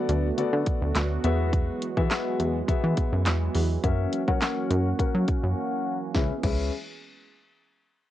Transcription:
Already playing: analog synth pad D3 F#3 A3 B3 F#4, grand piano B3 F#4 A4 D5
0.09 analog synth bass D2, closed hi-hat
0.38 analog synth bass D3, grand piano B3 F#4 A4 D5, closed hi-hat
0.53 analog synth bass D3
0.66 kick, closed hi-hat
0.82 analog synth bass D2
0.95 analog synth bass D2, snare, clap, closed hi-hat
1.24 analog synth bass E2, analog synth pad E3 G#3, grand piano B3 F#4 G#4 E5, closed hi-hat
1.53 kick, closed hi-hat
1.82 closed hi-hat
1.97 analog synth bass E3, grand piano B3 F#4 G#4 E5, kick
2.11 snare, clap, closed hi-hat
2.40 analog synth bass E2, closed hi-hat
2.68 analog synth bass E3, grand piano B3 F#4 G#4 E5, kick, closed hi-hat
2.84 analog synth bass E3
2.97 kick, closed hi-hat
3.12 analog synth bass F#2
3.26 analog synth bass E2, snare, clap, closed hi-hat
3.55 analog synth bass E2, open hi-hat
3.84 analog synth bass F#2, analog synth pad A#3 C#4 F#4, grand piano C#4 F#4 A#4 E5, kick, closed hi-hat
4.13 closed hi-hat
4.28 analog synth bass F#3, grand piano C#4 F#4 A#4 F#5, kick
4.42 snare, clap, closed hi-hat
4.70 analog synth bass F#2, closed hi-hat
4.99 analog synth bass F#3, grand piano C#4 F#4 A#4 F#5, kick, closed hi-hat
5.15 analog synth bass F#3
5.28 kick, closed hi-hat
5.43 analog synth bass F#2
6.15 analog synth bass C#2, analog synth pad E3 G#3 B3 C#4 G#4, grand piano C#4 G#4 B4 E5, kick, snare
6.43 analog synth bass C#2, grand piano C#4 G#4 B4 E5, kick, crash

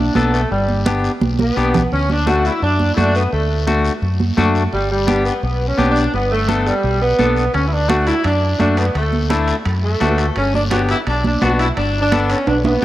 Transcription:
Already playing: saxophone section D4
0.15 fingered electric bass B1, saxophone section B3, clean electric guitar B3 D4 A4, high conga, short guiro
0.33 saxophone section A3, short guiro
0.51 fingered electric bass G1, saxophone section G3, high conga, long guiro
0.69 high conga
0.86 clean electric guitar B3 D4 G4, high conga, short guiro
1.04 short guiro
1.21 fingered electric bass B1, high conga, long guiro
1.39 saxophone section B3, high conga
1.56 fingered electric bass B1, clean electric guitar B3 D4 G4, short guiro
1.74 low conga, short guiro
1.92 fingered electric bass D2, saxophone section C#4, high conga, long guiro
2.09 saxophone section D4, high conga
2.26 clean electric guitar A3 D4 F#4, saxophone section F#4, high conga, short guiro
2.45 saxophone section E4, short guiro
2.62 fingered electric bass F#2, saxophone section D4, high conga, long guiro
2.79 high conga
2.93 clean electric guitar A3, saxophone section E4
2.97 fingered electric bass F#2, clean electric guitar D4 F#4, saxophone section D4, high conga, short guiro
3.15 saxophone section B3, short guiro
3.32 fingered electric bass D2, saxophone section A3, high conga, long guiro
3.67 clean electric guitar A3 D4 F#4, high conga, short guiro
3.85 short guiro
4.02 fingered electric bass F#2, high conga, long guiro
4.20 high conga
4.37 fingered electric bass F#2, clean electric guitar A3 D4 F#4, high conga, short guiro
4.55 short guiro
4.73 fingered electric bass G1, saxophone section G3, high conga, long guiro
4.91 saxophone section G3
5.07 clean electric guitar B3 D4 G4, high conga, short guiro
5.25 saxophone section B3, short guiro
5.43 fingered electric bass B1, saxophone section B3, high conga, long guiro
5.67 saxophone section C#4
5.78 fingered electric bass B1, clean electric guitar B3 D4 G4, high conga, short guiro
5.90 saxophone section D4
5.96 short guiro
6.14 fingered electric bass G1, saxophone section B3, high conga, long guiro
6.32 saxophone section A3
6.48 clean electric guitar B3 D4 A4, high conga, short guiro
6.67 saxophone section G3, short guiro
6.83 fingered electric bass B1, high conga, long guiro
7.01 saxophone section B3
7.19 fingered electric bass B1, clean electric guitar B3 D4 A4, high conga, short guiro
7.36 short guiro
7.54 fingered electric bass D2, saxophone section C#4, high conga, high timbale, long guiro
7.67 saxophone section E4
7.72 saxophone section D4
7.89 clean electric guitar A3 D4 F#4, saxophone section F#4, high conga, high timbale, short guiro
8.07 saxophone section E4, high timbale, short guiro
8.24 fingered electric bass F#2, saxophone section D4, high conga, high timbale, long guiro
8.59 fingered electric bass F#2, clean electric guitar A3 D4 F#4, saxophone section D4, high conga, high timbale, short guiro
8.77 saxophone section B3, high timbale, short guiro
8.95 fingered electric bass D2, saxophone section A3, high conga, high timbale, long guiro
9.13 high conga
9.30 clean electric guitar A3 D4 E4, high conga, high timbale, short guiro
9.48 high timbale, short guiro
9.65 fingered electric bass F#2, high conga, high timbale, long guiro
9.84 saxophone section A3
10.00 fingered electric bass D2, clean electric guitar A3 D4 F#4, high conga, high timbale, low timbale, short guiro
10.18 high timbale, short guiro
10.36 fingered electric bass G1, saxophone section C#4, high conga, high timbale, long guiro
10.54 saxophone section D4, high conga
10.71 clean electric guitar B3 D4 G4, saxophone section F#4, high conga, high timbale, short guiro
10.89 saxophone section E4, high timbale, short guiro
11.07 fingered electric bass B1, saxophone section D4, high conga, high timbale, long guiro
11.24 saxophone section D4, high conga
11.42 fingered electric bass B1, clean electric guitar B3 D4 F#4, saxophone section F#4, high conga, high timbale, low timbale, short guiro
11.59 saxophone section E4, high timbale, short guiro
11.77 fingered electric bass G1, saxophone section D4, high conga, high timbale, long guiro
12.01 saxophone section D4
12.12 clean electric guitar B3 D4 A4, high conga, high timbale, short guiro
12.30 saxophone section C#4, high timbale, short guiro
12.47 fingered electric bass B1, saxophone section D4, high conga, high timbale, long guiro
12.64 saxophone section B3, high conga, high timbale

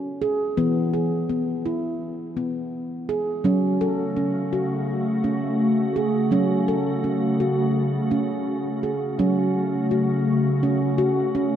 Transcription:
Already playing: handpan F#3 C#4
0.22 handpan G#4
0.57 handpan E3 B3
0.94 handpan G#4
1.29 handpan B3
1.66 handpan E4
2.37 handpan B3
3.09 handpan G#4
3.44 ambient pad C#3 A3 F#4, handpan F#3 C#4
3.81 handpan A4
4.17 handpan C#4
4.53 handpan F#4
5.24 handpan C#4
5.96 handpan G#4
6.31 ambient pad C#3, handpan F#3 C#4
6.68 handpan A4
7.04 handpan C#4
7.40 handpan F#4
8.11 handpan C#4
8.83 handpan G#4
9.19 ambient pad C#3 A3 F#4, handpan F#3 C#4
9.91 handpan F#4
10.63 handpan C#4
10.98 handpan F#4
11.35 handpan C#4

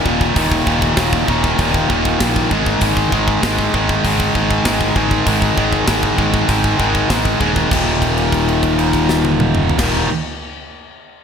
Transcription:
0.06 fingered electric bass D#1, distorted electric guitar D#2 A#2 D#3, kick
0.21 kick
0.36 fingered electric bass D#1, distorted electric guitar D#2 A#2 D#3, kick, open hi-hat
0.52 kick
0.67 fingered electric bass D#1, distorted electric guitar D#2 A#2 D#3, kick
0.82 kick
0.97 fingered electric bass D#1, distorted electric guitar D#2 A#2 D#3, kick, snare, open hi-hat
1.13 kick
1.28 fingered electric bass D#1, distorted electric guitar D#2 A#2 D#3, kick
1.44 kick
1.59 fingered electric bass D#1, distorted electric guitar D#2 A#2 D#3, kick, open hi-hat
1.74 kick
1.90 fingered electric bass D#1, distorted electric guitar D#2 A#2 D#3, kick
2.05 kick
2.20 fingered electric bass A#1, distorted electric guitar D#2 A#2 D#3, kick, snare, open hi-hat
2.36 kick
2.51 fingered electric bass G#1, distorted electric guitar G#2 D#3 G#3, kick
2.66 kick
2.81 fingered electric bass G#1, distorted electric guitar G#2 D#3 G#3, kick, open hi-hat
2.97 kick
3.12 fingered electric bass G#1, distorted electric guitar G#2 D#3 G#3, kick
3.28 kick
3.43 fingered electric bass G#1, distorted electric guitar G#2 D#3 G#3, kick, snare, open hi-hat
3.59 kick
3.74 fingered electric bass G#1, distorted electric guitar G#2 D#3 G#3, kick
3.89 kick
4.04 fingered electric bass G#1, distorted electric guitar G#2 D#3 G#3, kick, open hi-hat
4.20 kick
4.35 fingered electric bass G#1, distorted electric guitar G#2 D#3 G#3, kick
4.51 kick
4.65 fingered electric bass G#1, distorted electric guitar G#2 D#3 G#3, kick, snare, open hi-hat
4.81 kick
4.96 fingered electric bass G#1, distorted electric guitar G#2 D#3 G#3, kick
5.11 kick
5.27 fingered electric bass G#1, distorted electric guitar G#2 D#3 G#3, kick, open hi-hat
5.42 kick
5.57 fingered electric bass G#1, distorted electric guitar G#2 D#3 G#3, kick
5.73 kick
5.87 fingered electric bass G#1, distorted electric guitar G#2 D#3 G#3, kick, snare, open hi-hat
6.03 kick
6.18 fingered electric bass G#1, distorted electric guitar G#2 D#3 G#3, kick
6.34 kick
6.48 fingered electric bass G#1, distorted electric guitar G#2 D#3 G#3, kick, open hi-hat
6.64 kick
6.77 fingered electric bass G#1, distorted electric guitar G#2 D#3 G#3, kick
6.95 kick
7.09 fingered electric bass G#1, distorted electric guitar G#2 D#3 G#3, kick, snare, open hi-hat
7.25 kick
7.39 fingered electric bass D#1, distorted electric guitar G#2 D#3 G#3, kick
7.56 kick
7.69 fingered electric bass D#1, distorted electric guitar D#2 A#2 D#3, kick, crash
8.02 kick, crash
8.18 crash
8.32 kick, crash
8.49 crash
8.63 kick, crash
8.79 crash
8.93 kick, crash
9.09 snare
9.25 high tom
9.40 mid tom
9.55 mid tom
9.69 floor tom
9.78 fingered electric bass D#1, distorted electric guitar D#2 A#2 D#3, kick, snare, crash

